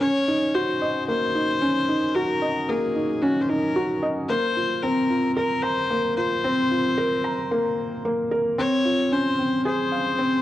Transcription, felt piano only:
0.01 C#4
0.28 D#4
0.55 F#4
0.82 D#5
1.08 A#3
1.35 D#4
1.61 C#4
1.89 D#4
2.16 F#4
2.42 D#5
2.69 A#3
2.96 D#4
3.22 C#4
3.49 D#4
3.76 F#4
4.02 D#5
4.29 A#3
4.56 F4
4.83 C4
5.10 F4
5.37 A#4
5.63 A#5
5.90 A#3
6.17 F4
6.44 C4
6.71 F4
6.98 A#4
7.24 A#5
7.51 A#3
8.05 A#3
8.31 A#4
8.58 C4
8.85 F4
9.12 C#4
9.39 C4
9.65 G#4
9.92 F5
10.19 C4

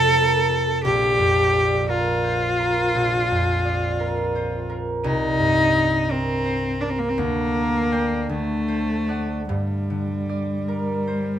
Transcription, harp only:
Already playing: F2 C3 A4 C5
0.15 A#4
0.50 A4
0.85 A#1
1.18 F2
1.53 D5
1.89 A#4
2.24 C5
2.59 A#4
2.95 A#1
3.31 F2
3.65 D5
4.00 A#4
4.35 C5
4.70 A#4
5.04 C2
5.39 G2
5.75 D#5
6.11 A#4
6.46 C5
6.82 A#4
7.18 D2
7.55 A#4
7.92 D5 G5
8.29 D2
8.68 C5
9.09 D5 F#5
9.49 G2
9.90 D3
10.29 D5
10.68 A#4
11.07 C5

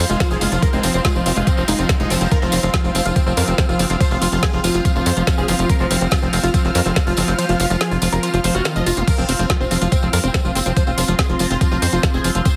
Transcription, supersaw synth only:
0.10 F4
0.20 F4
0.31 G#4
0.41 F4
0.52 F4
0.62 A#4
0.73 C4
0.84 C4
0.94 C4
1.05 F4
1.15 C4
1.26 C4
1.36 F4
1.47 C4
1.58 C4
1.68 D#4
1.79 C4
1.89 C4
2.00 D#4
2.10 C4
2.21 C4
2.31 A#4
2.42 C4
2.53 C4
2.63 C4
2.74 F4
2.84 C4
2.95 C4
3.06 F4
3.16 C4
3.27 C4
3.37 A#4
3.48 C4
3.58 C4
3.69 F4
3.79 C4
3.90 C4
4.01 C5
4.11 F4
4.22 F4
4.32 F4
4.43 G#4
4.53 F4
4.64 F4
4.75 F4
4.85 F4
4.96 F4
5.06 C5
5.17 F4
5.27 F4
5.38 G#4
5.48 F4
5.59 F4
5.70 A#4
5.80 C4
5.91 C4
6.01 C4
6.12 F4
6.22 C4
6.33 C4
6.43 F4
6.54 C4
6.65 C4
6.75 A#4
6.86 C4
6.96 C4
7.07 F4
7.17 C4
7.28 C4
7.39 C5
7.49 F4
7.60 F4
7.70 F4
7.81 G#4
7.91 F4
8.02 F4
8.13 A#4
8.23 F4
8.34 F4
8.44 C5
8.55 F4
8.65 F4
8.76 D#5
8.86 F4
8.97 F4
9.08 A#4
9.18 C4
9.29 C4
9.39 C4
9.50 F4
9.60 C4
9.71 C4
9.82 F4
9.92 C4
10.03 C4
10.13 A#4
10.24 C4
10.34 C4
10.45 F4
10.55 C4
10.66 C4
10.77 C5
10.87 F4
10.98 F4
11.08 F4
11.19 G#4
11.29 F4
11.40 F4
11.50 F4
11.61 F4
11.72 F4
11.82 C5
11.93 F4
12.03 F4
12.14 G#4
12.24 F4
12.35 F4
12.45 C5

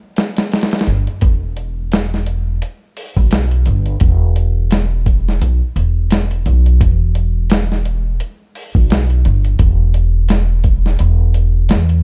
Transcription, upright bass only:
0.87 G1
1.22 E1
3.17 B1
3.67 G1
4.01 E1
5.42 B1
5.76 E1
6.46 B1
6.81 E1
8.75 B1
9.26 G1
9.59 E1
11.00 E1
11.70 E2

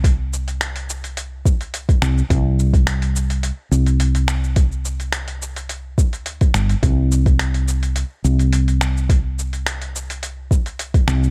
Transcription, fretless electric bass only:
Already playing: C2
2.02 C2
2.30 C2
3.71 C2
6.26 D2
6.54 G1
6.83 C2
8.24 C2
11.07 C2

